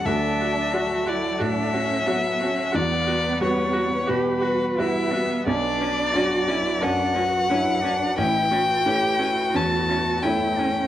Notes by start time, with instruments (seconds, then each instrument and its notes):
Already playing: string section A4
0.05 felt piano D2, string section F#3 F#5, cello D4, viola F#4, violin E5
0.41 viola F#4
0.73 felt piano F#3 F#4 D5, viola F#4, cello F#4
1.06 cello E4, viola F#4, violin D5
1.39 felt piano A2, cello D4, viola F#4, violin E5
1.72 cello C#4, viola F#4
2.07 felt piano F#3 F#4 C#5, cello B3, viola F#4
2.40 cello C#4, viola F#4
2.71 felt piano E2, string section G3 B4, cello B3, viola F#4, violin D5
3.06 viola F#4
3.40 felt piano G3 F#4 B4, viola F#4, violin C#5
3.72 viola F#4
4.06 felt piano B2, viola F#4, cello G4, violin B4
4.41 viola F#4, cello F#4
4.78 felt piano G3 F#4 B4, cello E4, viola F#4, violin E5
5.12 cello B3, viola F#4
5.46 felt piano B1, string section F#3 F#4 B4, viola C#4, cello D4, violin D5
5.81 viola C#4
6.14 felt piano F#3 D4 D5, viola C#4, cello F#4
6.48 viola C#4, cello E4
6.81 felt piano F#2, viola C#4, cello D4, violin F#5
7.15 viola C#4, cello F#4
7.49 felt piano F#3 D4 C#5, viola C#4, cello E4
7.83 viola C#4, cello D4
8.17 felt piano A1, string section A3 E4, viola C#4, cello E4, violin G5
8.51 viola C#4, cello F#4
8.85 felt piano A3 E4 C#5, viola C#4, cello G4
9.19 viola C#4, cello F#4
9.54 felt piano E2, viola C#4, violin A5
9.89 viola C#4
10.23 felt piano A3 E4 C#5, viola C#4, cello E4, violin G5
10.58 cello C#4, viola C#4